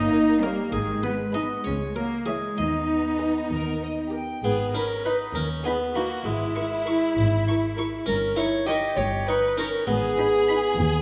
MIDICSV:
0, 0, Header, 1, 9, 480
1, 0, Start_track
1, 0, Key_signature, 5, "minor"
1, 0, Tempo, 614754
1, 571, Time_signature, 6, 3, 24, 8
1, 3461, Tempo, 604230
1, 8693, End_track
2, 0, Start_track
2, 0, Title_t, "Violin section"
2, 0, Program_c, 0, 48
2, 341, Note_on_c, 0, 75, 55
2, 513, Note_off_c, 0, 75, 0
2, 1050, Note_on_c, 0, 75, 51
2, 1226, Note_off_c, 0, 75, 0
2, 1779, Note_on_c, 0, 76, 40
2, 1956, Note_off_c, 0, 76, 0
2, 2509, Note_on_c, 0, 75, 38
2, 2683, Note_off_c, 0, 75, 0
2, 2749, Note_on_c, 0, 70, 44
2, 2969, Note_off_c, 0, 70, 0
2, 2990, Note_on_c, 0, 75, 44
2, 3052, Note_off_c, 0, 75, 0
2, 3228, Note_on_c, 0, 79, 39
2, 3460, Note_off_c, 0, 79, 0
2, 3714, Note_on_c, 0, 83, 38
2, 3778, Note_off_c, 0, 83, 0
2, 3948, Note_on_c, 0, 83, 39
2, 4011, Note_off_c, 0, 83, 0
2, 4431, Note_on_c, 0, 83, 43
2, 4495, Note_off_c, 0, 83, 0
2, 4666, Note_on_c, 0, 83, 41
2, 4729, Note_off_c, 0, 83, 0
2, 5144, Note_on_c, 0, 85, 41
2, 5207, Note_off_c, 0, 85, 0
2, 5392, Note_on_c, 0, 85, 44
2, 5456, Note_off_c, 0, 85, 0
2, 5877, Note_on_c, 0, 85, 44
2, 5940, Note_off_c, 0, 85, 0
2, 6116, Note_on_c, 0, 85, 44
2, 6180, Note_off_c, 0, 85, 0
2, 6597, Note_on_c, 0, 85, 43
2, 6660, Note_off_c, 0, 85, 0
2, 6838, Note_on_c, 0, 85, 51
2, 6901, Note_off_c, 0, 85, 0
2, 7316, Note_on_c, 0, 85, 50
2, 7379, Note_off_c, 0, 85, 0
2, 7556, Note_on_c, 0, 85, 47
2, 7619, Note_off_c, 0, 85, 0
2, 8026, Note_on_c, 0, 83, 49
2, 8089, Note_off_c, 0, 83, 0
2, 8267, Note_on_c, 0, 83, 57
2, 8330, Note_off_c, 0, 83, 0
2, 8693, End_track
3, 0, Start_track
3, 0, Title_t, "Clarinet"
3, 0, Program_c, 1, 71
3, 3468, Note_on_c, 1, 68, 53
3, 3575, Note_off_c, 1, 68, 0
3, 3710, Note_on_c, 1, 70, 58
3, 3943, Note_off_c, 1, 70, 0
3, 3952, Note_on_c, 1, 71, 58
3, 4059, Note_off_c, 1, 71, 0
3, 4191, Note_on_c, 1, 70, 53
3, 4298, Note_off_c, 1, 70, 0
3, 4434, Note_on_c, 1, 68, 51
3, 4541, Note_off_c, 1, 68, 0
3, 4674, Note_on_c, 1, 66, 60
3, 4781, Note_off_c, 1, 66, 0
3, 4909, Note_on_c, 1, 64, 74
3, 6319, Note_off_c, 1, 64, 0
3, 6358, Note_on_c, 1, 70, 72
3, 6596, Note_on_c, 1, 73, 72
3, 6608, Note_off_c, 1, 70, 0
3, 6831, Note_off_c, 1, 73, 0
3, 6835, Note_on_c, 1, 75, 76
3, 7071, Note_on_c, 1, 73, 70
3, 7083, Note_off_c, 1, 75, 0
3, 7313, Note_on_c, 1, 71, 68
3, 7325, Note_off_c, 1, 73, 0
3, 7552, Note_on_c, 1, 70, 75
3, 7564, Note_off_c, 1, 71, 0
3, 7782, Note_off_c, 1, 70, 0
3, 7787, Note_on_c, 1, 68, 98
3, 8693, Note_off_c, 1, 68, 0
3, 8693, End_track
4, 0, Start_track
4, 0, Title_t, "Violin section"
4, 0, Program_c, 2, 48
4, 337, Note_on_c, 2, 73, 52
4, 341, Note_on_c, 2, 70, 55
4, 512, Note_off_c, 2, 73, 0
4, 514, Note_off_c, 2, 70, 0
4, 1048, Note_on_c, 2, 68, 48
4, 1049, Note_on_c, 2, 71, 45
4, 1225, Note_off_c, 2, 68, 0
4, 1225, Note_off_c, 2, 71, 0
4, 1772, Note_on_c, 2, 73, 45
4, 1773, Note_on_c, 2, 68, 41
4, 1952, Note_off_c, 2, 73, 0
4, 1953, Note_off_c, 2, 68, 0
4, 2496, Note_on_c, 2, 68, 36
4, 2497, Note_on_c, 2, 71, 37
4, 2676, Note_off_c, 2, 68, 0
4, 2677, Note_off_c, 2, 71, 0
4, 3212, Note_on_c, 2, 70, 39
4, 3215, Note_on_c, 2, 67, 39
4, 3395, Note_off_c, 2, 70, 0
4, 3397, Note_off_c, 2, 67, 0
4, 3459, Note_on_c, 2, 68, 52
4, 3685, Note_off_c, 2, 68, 0
4, 3696, Note_on_c, 2, 70, 47
4, 3936, Note_off_c, 2, 70, 0
4, 3941, Note_on_c, 2, 71, 45
4, 4175, Note_on_c, 2, 70, 48
4, 4180, Note_off_c, 2, 71, 0
4, 4238, Note_off_c, 2, 70, 0
4, 4418, Note_on_c, 2, 68, 48
4, 4481, Note_off_c, 2, 68, 0
4, 4666, Note_on_c, 2, 66, 52
4, 4903, Note_off_c, 2, 66, 0
4, 4904, Note_on_c, 2, 64, 65
4, 6346, Note_off_c, 2, 64, 0
4, 6352, Note_on_c, 2, 70, 61
4, 6415, Note_off_c, 2, 70, 0
4, 6586, Note_on_c, 2, 73, 59
4, 6650, Note_off_c, 2, 73, 0
4, 6826, Note_on_c, 2, 75, 58
4, 6890, Note_off_c, 2, 75, 0
4, 7062, Note_on_c, 2, 73, 62
4, 7125, Note_off_c, 2, 73, 0
4, 7312, Note_on_c, 2, 71, 66
4, 7544, Note_off_c, 2, 71, 0
4, 7552, Note_on_c, 2, 70, 66
4, 7616, Note_off_c, 2, 70, 0
4, 7787, Note_on_c, 2, 68, 80
4, 8693, Note_off_c, 2, 68, 0
4, 8693, End_track
5, 0, Start_track
5, 0, Title_t, "Harpsichord"
5, 0, Program_c, 3, 6
5, 0, Note_on_c, 3, 75, 66
5, 307, Note_off_c, 3, 75, 0
5, 336, Note_on_c, 3, 70, 58
5, 555, Note_off_c, 3, 70, 0
5, 566, Note_on_c, 3, 68, 57
5, 788, Note_off_c, 3, 68, 0
5, 806, Note_on_c, 3, 71, 51
5, 1028, Note_off_c, 3, 71, 0
5, 1049, Note_on_c, 3, 75, 53
5, 1270, Note_off_c, 3, 75, 0
5, 1283, Note_on_c, 3, 73, 52
5, 1508, Note_off_c, 3, 73, 0
5, 1530, Note_on_c, 3, 70, 49
5, 1755, Note_off_c, 3, 70, 0
5, 1763, Note_on_c, 3, 68, 37
5, 1993, Note_off_c, 3, 68, 0
5, 2014, Note_on_c, 3, 75, 48
5, 3190, Note_off_c, 3, 75, 0
5, 3470, Note_on_c, 3, 59, 51
5, 3691, Note_off_c, 3, 59, 0
5, 3711, Note_on_c, 3, 61, 52
5, 3932, Note_off_c, 3, 61, 0
5, 3959, Note_on_c, 3, 63, 50
5, 4177, Note_off_c, 3, 63, 0
5, 4191, Note_on_c, 3, 61, 52
5, 4413, Note_off_c, 3, 61, 0
5, 4431, Note_on_c, 3, 59, 52
5, 4653, Note_off_c, 3, 59, 0
5, 4673, Note_on_c, 3, 58, 51
5, 4894, Note_off_c, 3, 58, 0
5, 4906, Note_on_c, 3, 56, 52
5, 6315, Note_off_c, 3, 56, 0
5, 6343, Note_on_c, 3, 61, 56
5, 6568, Note_off_c, 3, 61, 0
5, 6584, Note_on_c, 3, 64, 58
5, 6808, Note_off_c, 3, 64, 0
5, 6824, Note_on_c, 3, 67, 62
5, 7048, Note_off_c, 3, 67, 0
5, 7071, Note_on_c, 3, 67, 62
5, 7292, Note_off_c, 3, 67, 0
5, 7315, Note_on_c, 3, 63, 61
5, 7534, Note_off_c, 3, 63, 0
5, 7547, Note_on_c, 3, 61, 58
5, 7770, Note_off_c, 3, 61, 0
5, 7783, Note_on_c, 3, 59, 68
5, 8693, Note_off_c, 3, 59, 0
5, 8693, End_track
6, 0, Start_track
6, 0, Title_t, "Viola section"
6, 0, Program_c, 4, 48
6, 0, Note_on_c, 4, 58, 71
6, 333, Note_on_c, 4, 55, 62
6, 334, Note_off_c, 4, 58, 0
6, 565, Note_off_c, 4, 55, 0
6, 571, Note_on_c, 4, 51, 54
6, 803, Note_off_c, 4, 51, 0
6, 813, Note_on_c, 4, 56, 59
6, 1048, Note_off_c, 4, 56, 0
6, 1048, Note_on_c, 4, 59, 56
6, 1286, Note_off_c, 4, 59, 0
6, 1289, Note_on_c, 4, 56, 54
6, 1523, Note_off_c, 4, 56, 0
6, 1532, Note_on_c, 4, 54, 47
6, 1594, Note_off_c, 4, 54, 0
6, 1771, Note_on_c, 4, 52, 38
6, 1834, Note_off_c, 4, 52, 0
6, 2017, Note_on_c, 4, 59, 55
6, 3199, Note_off_c, 4, 59, 0
6, 3699, Note_on_c, 4, 63, 40
6, 3702, Note_on_c, 4, 71, 40
6, 3762, Note_off_c, 4, 63, 0
6, 3765, Note_off_c, 4, 71, 0
6, 3946, Note_on_c, 4, 71, 38
6, 3950, Note_on_c, 4, 63, 39
6, 4010, Note_off_c, 4, 71, 0
6, 4014, Note_off_c, 4, 63, 0
6, 4431, Note_on_c, 4, 63, 40
6, 4431, Note_on_c, 4, 71, 41
6, 4495, Note_off_c, 4, 63, 0
6, 4495, Note_off_c, 4, 71, 0
6, 4674, Note_on_c, 4, 63, 44
6, 4674, Note_on_c, 4, 71, 40
6, 4738, Note_off_c, 4, 63, 0
6, 4738, Note_off_c, 4, 71, 0
6, 5156, Note_on_c, 4, 64, 46
6, 5157, Note_on_c, 4, 70, 43
6, 5220, Note_off_c, 4, 64, 0
6, 5220, Note_off_c, 4, 70, 0
6, 5399, Note_on_c, 4, 64, 44
6, 5399, Note_on_c, 4, 70, 44
6, 5462, Note_off_c, 4, 64, 0
6, 5463, Note_off_c, 4, 70, 0
6, 5877, Note_on_c, 4, 70, 46
6, 5880, Note_on_c, 4, 64, 44
6, 5940, Note_off_c, 4, 70, 0
6, 5943, Note_off_c, 4, 64, 0
6, 6115, Note_on_c, 4, 70, 46
6, 6116, Note_on_c, 4, 64, 46
6, 6178, Note_off_c, 4, 70, 0
6, 6179, Note_off_c, 4, 64, 0
6, 6588, Note_on_c, 4, 70, 47
6, 6590, Note_on_c, 4, 63, 47
6, 6652, Note_off_c, 4, 70, 0
6, 6653, Note_off_c, 4, 63, 0
6, 6831, Note_on_c, 4, 63, 48
6, 6834, Note_on_c, 4, 70, 50
6, 6894, Note_off_c, 4, 63, 0
6, 6897, Note_off_c, 4, 70, 0
6, 7309, Note_on_c, 4, 70, 47
6, 7311, Note_on_c, 4, 63, 46
6, 7372, Note_off_c, 4, 70, 0
6, 7374, Note_off_c, 4, 63, 0
6, 7552, Note_on_c, 4, 63, 47
6, 7553, Note_on_c, 4, 70, 50
6, 7615, Note_off_c, 4, 63, 0
6, 7616, Note_off_c, 4, 70, 0
6, 8026, Note_on_c, 4, 63, 50
6, 8029, Note_on_c, 4, 71, 51
6, 8090, Note_off_c, 4, 63, 0
6, 8092, Note_off_c, 4, 71, 0
6, 8276, Note_on_c, 4, 63, 51
6, 8277, Note_on_c, 4, 71, 50
6, 8340, Note_off_c, 4, 63, 0
6, 8340, Note_off_c, 4, 71, 0
6, 8693, End_track
7, 0, Start_track
7, 0, Title_t, "Cello section"
7, 0, Program_c, 5, 48
7, 0, Note_on_c, 5, 63, 73
7, 328, Note_off_c, 5, 63, 0
7, 336, Note_on_c, 5, 58, 66
7, 571, Note_off_c, 5, 58, 0
7, 574, Note_on_c, 5, 56, 66
7, 809, Note_off_c, 5, 56, 0
7, 812, Note_on_c, 5, 59, 58
7, 874, Note_off_c, 5, 59, 0
7, 1048, Note_on_c, 5, 63, 66
7, 1111, Note_off_c, 5, 63, 0
7, 1291, Note_on_c, 5, 61, 55
7, 1353, Note_off_c, 5, 61, 0
7, 1530, Note_on_c, 5, 58, 55
7, 1766, Note_off_c, 5, 58, 0
7, 1777, Note_on_c, 5, 56, 47
7, 2017, Note_off_c, 5, 56, 0
7, 2017, Note_on_c, 5, 63, 58
7, 3223, Note_off_c, 5, 63, 0
7, 3465, Note_on_c, 5, 44, 55
7, 4048, Note_off_c, 5, 44, 0
7, 4190, Note_on_c, 5, 39, 48
7, 4771, Note_off_c, 5, 39, 0
7, 4910, Note_on_c, 5, 44, 54
7, 5489, Note_off_c, 5, 44, 0
7, 5632, Note_on_c, 5, 44, 52
7, 6210, Note_off_c, 5, 44, 0
7, 6350, Note_on_c, 5, 43, 64
7, 6928, Note_off_c, 5, 43, 0
7, 7074, Note_on_c, 5, 43, 59
7, 7650, Note_off_c, 5, 43, 0
7, 7790, Note_on_c, 5, 44, 68
7, 8366, Note_off_c, 5, 44, 0
7, 8503, Note_on_c, 5, 39, 65
7, 8693, Note_off_c, 5, 39, 0
7, 8693, End_track
8, 0, Start_track
8, 0, Title_t, "Double bass section"
8, 0, Program_c, 6, 48
8, 0, Note_on_c, 6, 31, 65
8, 436, Note_off_c, 6, 31, 0
8, 576, Note_on_c, 6, 32, 64
8, 1148, Note_off_c, 6, 32, 0
8, 1294, Note_on_c, 6, 37, 51
8, 1877, Note_off_c, 6, 37, 0
8, 2022, Note_on_c, 6, 39, 46
8, 2603, Note_off_c, 6, 39, 0
8, 2743, Note_on_c, 6, 39, 45
8, 3324, Note_off_c, 6, 39, 0
8, 3462, Note_on_c, 6, 32, 51
8, 4046, Note_off_c, 6, 32, 0
8, 4185, Note_on_c, 6, 39, 54
8, 4768, Note_off_c, 6, 39, 0
8, 4906, Note_on_c, 6, 32, 52
8, 5487, Note_off_c, 6, 32, 0
8, 5630, Note_on_c, 6, 32, 62
8, 6209, Note_off_c, 6, 32, 0
8, 6352, Note_on_c, 6, 31, 59
8, 6929, Note_off_c, 6, 31, 0
8, 7066, Note_on_c, 6, 31, 70
8, 7646, Note_off_c, 6, 31, 0
8, 7790, Note_on_c, 6, 32, 68
8, 8366, Note_off_c, 6, 32, 0
8, 8504, Note_on_c, 6, 39, 71
8, 8693, Note_off_c, 6, 39, 0
8, 8693, End_track
9, 0, Start_track
9, 0, Title_t, "Drums"
9, 3464, Note_on_c, 9, 81, 32
9, 3544, Note_off_c, 9, 81, 0
9, 8693, End_track
0, 0, End_of_file